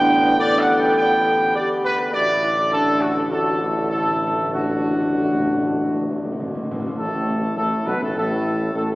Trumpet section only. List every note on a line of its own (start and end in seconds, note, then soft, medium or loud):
0.00 0.34 G5 loud
0.39 0.58 D5 loud
0.58 0.78 F#5 loud
0.78 0.96 G5 medium
0.97 1.51 G5 medium
1.55 1.68 D5 medium
1.84 1.98 B4 loud
1.99 2.13 B4 medium
2.13 2.68 D5 loud
2.71 2.99 A4 medium
3.01 3.16 F#4 medium
3.17 3.23 A4 medium
3.30 3.87 A4 medium
3.89 4.47 A4 medium
4.52 6.31 F#4 medium
6.97 7.53 A4 medium
7.57 7.85 A4 medium
7.86 8.01 B4 medium
8.03 8.15 A4 medium
8.17 8.72 A4 medium
8.75 8.89 A4 medium